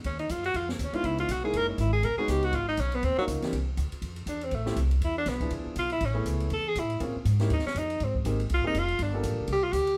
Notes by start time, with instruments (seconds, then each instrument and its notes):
0.04 upright bass D#2, tenor saxophone C#4, kick, ride
0.19 tenor saxophone D#4, ride
0.29 upright bass F#2, tenor saxophone F4, kick, hi-hat pedal, ride
0.44 tenor saxophone F#4, ride
0.54 upright bass F2, tenor saxophone F4, kick, ride
0.69 tenor saxophone A#3, snare
0.79 upright bass D#2, kick, hi-hat pedal, ride
0.83 tenor saxophone C#4
0.93 grand piano G#3 B3 C#4 D#4 E4, tenor saxophone F4, muted upright bass stroke, ride
1.04 upright bass C#2, tenor saxophone E4, kick, ride
1.18 tenor saxophone F4, ride
1.29 upright bass B1, tenor saxophone F#4, kick, hi-hat pedal, ride
1.43 grand piano G#3 A#3 C#4 D#4 E4, tenor saxophone G#4
1.53 upright bass F#1, tenor saxophone A#4, kick, ride
1.69 tenor saxophone C#4
1.78 upright bass G#1, tenor saxophone E4, kick, hi-hat pedal, ride
1.93 tenor saxophone G#4
2.03 upright bass B1, tenor saxophone A#4, kick, ride
2.17 grand piano G#3 B3 C#4 D#4 F#4, tenor saxophone G#4, muted upright bass stroke
2.28 upright bass C#2, tenor saxophone G4, kick, hi-hat pedal, ride
2.43 tenor saxophone F#4, ride
2.53 upright bass G#1, tenor saxophone F4, kick, ride
2.68 tenor saxophone D#4
2.77 upright bass B1, tenor saxophone C#4, kick, hi-hat pedal, ride
2.92 tenor saxophone B3, ride
3.03 upright bass D#2, tenor saxophone C4, kick, ride
3.17 grand piano F#3 A#3 C#4 D#4 F4, tenor saxophone F#3, muted upright bass stroke
3.27 upright bass C#2, kick, hi-hat pedal, ride
3.42 grand piano E3 A#3 C4 D4 G4, muted upright bass stroke, snare, ride
3.53 upright bass C2, kick, ride
3.77 upright bass D2, kick, hi-hat pedal, ride
3.92 muted upright bass stroke, ride
4.02 upright bass F2, kick, ride
4.16 ride
4.26 upright bass E2, tenor saxophone D4, kick, hi-hat pedal, ride
4.41 tenor saxophone C4, ride
4.51 upright bass A1, tenor saxophone A3, kick, ride
4.66 grand piano F3 A3 C4 E4 G4, snare
4.76 upright bass C2, kick, hi-hat pedal, ride
4.91 ride
5.01 upright bass E2, tenor saxophone E4, kick, ride
5.18 tenor saxophone D4
5.26 upright bass B1, tenor saxophone B3, kick, snare, hi-hat pedal, ride
5.40 grand piano F3 B3 D4 E4 G#4, kick, ride
5.51 upright bass D2, kick, ride
5.66 muted upright bass stroke
5.76 upright bass B1, tenor saxophone F4, kick, hi-hat pedal, ride
5.90 tenor saxophone E4, ride
6.01 upright bass A1, kick, ride
6.05 tenor saxophone C#4
6.14 grand piano A3 B3 C#4 E4 G#4
6.25 upright bass C#2, kick, hi-hat pedal, ride
6.40 ride
6.50 upright bass E2, tenor saxophone A4, kick, ride
6.68 tenor saxophone G#4
6.75 upright bass A2, tenor saxophone E4, kick, hi-hat pedal, ride
6.90 ride
7.00 upright bass A#2, grand piano A#3 C4 C#4 F4 G#4, kick, ride
7.16 muted upright bass stroke
7.25 upright bass G#2, kick, hi-hat pedal, ride
7.40 grand piano A#3 C#4 D#4 E4 G4, snare, ride
7.50 upright bass D#2, tenor saxophone D#4, kick, ride
7.59 snare
7.67 tenor saxophone C#4, snare
7.75 upright bass F2, tenor saxophone D#4, kick, hi-hat pedal, ride
7.90 ride
8.00 upright bass G#2, tenor saxophone C4, kick, ride
8.15 kick
8.25 upright bass G#1, grand piano A#3 C4 D#4 G4 G#4, hi-hat pedal, ride
8.40 ride
8.50 upright bass C2, kick, ride
8.54 tenor saxophone F4
8.59 upright bass G#1
8.64 grand piano A#3 C4 D#4 G4 G#4, tenor saxophone D#4
8.68 upright bass G1
8.75 upright bass F1, tenor saxophone F4, kick, hi-hat pedal, ride
8.88 ride
8.99 upright bass G1, tenor saxophone D4, kick, ride
9.13 grand piano A#3 D4 F4 G4 A4
9.23 upright bass A1, kick, hi-hat pedal, ride
9.32 upright bass G1
9.40 upright bass F1
9.48 upright bass C2, kick, ride
9.52 tenor saxophone G4
9.63 tenor saxophone F4
9.73 upright bass D2, tenor saxophone G4, kick, hi-hat pedal, ride
9.87 ride